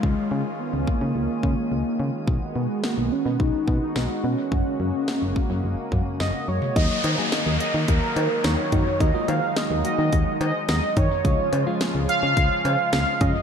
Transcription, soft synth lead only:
X:1
M:4/4
L:1/16
Q:1/4=107
K:Ebm
V:1 name="Soft synth lead"
A,4 C2 B,8 z2 | z2 ^G,2 B,2 D2 ^D3 D3 _D2- | D12 e2 d2 | e6 e2 B4 d4 |
e2 f2 e2 e4 e2 e2 d2- | d4 z2 f6 f2 e2 |]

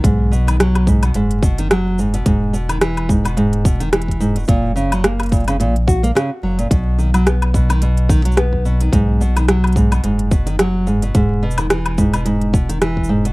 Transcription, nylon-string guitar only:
X:1
M:4/4
L:1/16
Q:"Swing 16ths" 1/4=108
K:G#m
V:1 name="Nylon-string guitar" clef=bass
G,,2 B,, D, F,2 G,, B,, G,,2 B,, D, F,2 G,, B,, | G,,2 B,, D, E,2 G,, B,, G,,2 B,, D, E,2 G,, B,, | A,,2 C, F, A,2 A,, C, A,, z F A, C, z F, A,, | B,,2 D, F, B,2 B,, D, B,,2 D, F, B,2 B,, D, |
G,,2 B,, D, F,2 G,, B,, G,,2 B,, D, F,2 G,, B,, | G,,2 B,, D, E,2 G,, B,, G,,2 B,, D, E,2 G,, B,, |]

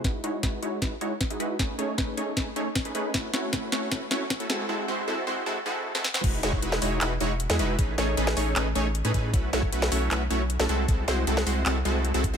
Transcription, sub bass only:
X:1
M:4/4
L:1/16
Q:1/4=155
K:E
V:1 name="Sub bass" clef=bass
z16 | z16 | z16 | z16 |
E,,,2 E,,,2 E,,,2 E,,,2 E,,,2 E,,,3 E,, E,,,2 | A,,,2 A,,,2 A,,,2 A,,,2 A,,,2 A,,,3 A,, A,,2 | B,,,2 B,,,2 B,,,2 B,,,2 B,,,2 B,,,3 B,,, ^B,,,2 | ^B,,,2 B,,,2 B,,,2 B,,,2 B,,,2 B,,,3 B,,,2 B,,, |]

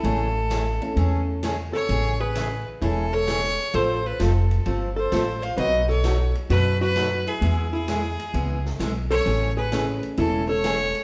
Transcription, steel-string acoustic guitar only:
X:1
M:4/4
L:1/8
Q:"Swing" 1/4=130
K:A
V:1 name="Steel-string acoustic guitar"
[C,E,A,CG] z [C,E,A,CG] z [C,E,A,CG] z [C,E,A,CG] z | [C,E,A,CG] z [C,E,A,CG] z [C,E,A,CG] z [C,E,A,CG] z | [=F,A,=C=FA] z [F,A,CFA] z [F,A,CFA] z [F,A,CFA] z | [B,,F,A,^DF] z [B,,F,A,DF] z [B,,F,A,DF] z [B,,F,A,DF] z |
[E,G,B,EG] z [E,G,B,EG] z [E,G,B,EG] z [E,G,B,EG] z | [C,E,A,CG] z [C,E,A,CG] z [C,E,A,CG] z [C,E,A,CG] z |]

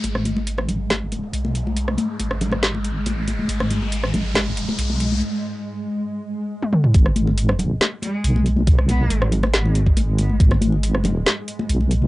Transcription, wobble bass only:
X:1
M:4/4
L:1/8
Q:1/4=139
K:G#phr
V:1 name="Wobble bass" clef=bass
G,,,3 G,,,3 B,,,2- | B,,, z G,,,4 A,,,2 | G,,,3 G,,,3 B,,,2 | z8 |
G,,,4 z2 B,,,2- | B,,,2 G,,,4 G,,,2 | G,,,4 z2 B,,,2 |]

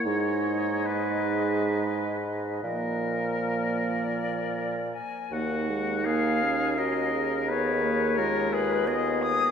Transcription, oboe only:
X:1
M:3/4
L:1/8
Q:1/4=80
K:Ebm
V:1 name="Oboe"
d2 c3 z | B4- B z | G2 A2 B2 | c2 B A A2 |]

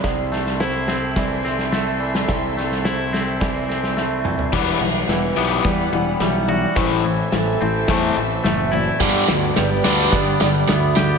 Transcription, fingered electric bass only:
X:1
M:4/4
L:1/8
Q:1/4=107
K:Ador
V:1 name="Fingered electric bass" clef=bass
C,,8 | C,,8 | E,,, B,,, E,,, B,,, E,, E,,, B,,,2 | A,,,2 A,,, A,,, E,, A,,, F,,,2 |
G,,, D,, G,,, D,, G,, G,,, D,,2 |]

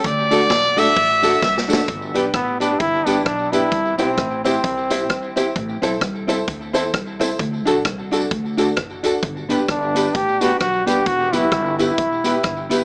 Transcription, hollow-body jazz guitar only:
X:1
M:4/4
L:1/16
Q:"Swing" 1/4=131
K:G
V:1 name="Hollow-body jazz guitar"
z2 [A,DF] z3 [A,DF] z3 [A,DF] z3 [A,DF] z | z2 [B,DG] z3 [B,DG] z3 [B,DG] z3 [B,DG] z | z2 [CEG] z3 [CEG] z3 [CEG] z3 [CEG] z | z2 [CEA] z3 [CEA] z3 [CEA] z3 [CEA] z |
z2 [DFA] z3 [DFA] z3 [DFA] z3 [DFA] z | z2 [B,DG] z3 [B,DG] z3 [B,DG] z3 [B,DG] z | z2 [B,EG] z3 [B,EG] z3 [B,EG] z3 [B,EG] z |]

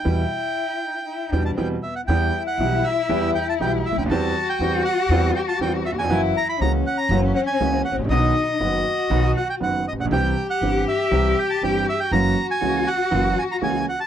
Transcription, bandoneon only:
X:1
M:4/4
L:1/16
Q:1/4=120
K:Em
V:1 name="Bandoneon"
g8- g2 g a g2 e f | g3 f3 e4 g a g2 e g | a3 g3 f4 g a g2 e ^g- | ^g z ^a b a2 f a2 z f g3 f2 |
^d8- d2 f g f2 d f | g3 f3 e4 g a g2 e g | ^a3 ^g3 f4 g a g2 f =a |]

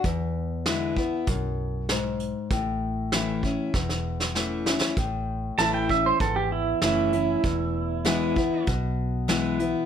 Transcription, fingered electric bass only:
X:1
M:4/4
L:1/8
Q:1/4=97
K:A
V:1 name="Fingered electric bass" clef=bass
E,,4 B,,,4 | A,,,4 E,,,4 | A,,,2 A,,,2 G,,,2 F,,,2 | E,,,4 B,,,4 |]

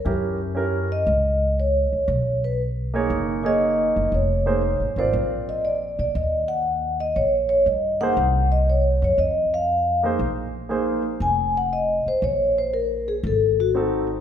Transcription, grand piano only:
X:1
M:4/4
L:1/8
Q:"Swing" 1/4=118
K:Fphr
V:1 name="Grand piano"
[D_F=GB] z [DFGB] z4 z | z3 [^A,^D_A^c]2 [^A,D_Ac]3 | z [B,EAc] z [CFB=d]3 z2 | z6 z [B,EAc] |
z6 z [B,EAc] | z2 [B,EAc] z4 z | z6 [CEG=A] z |]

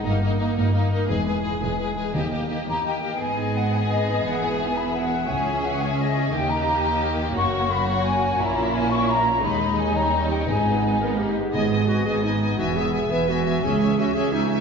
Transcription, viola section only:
X:1
M:6/8
L:1/8
Q:3/8=115
K:D#phr
V:1 name="Viola section"
A, A, A, A, A, A, | G, G, G, G, G, G, | A, A, A, A, A, A, | [K:G#m] B,6- |
B,6 | C6 | A,6- | A,6 |
A,6 | G,3 =G,3 | G,3 B, A, G, | B, B, B, B, B, B, |
B, B, B, B, B, B, | C C C C C C |]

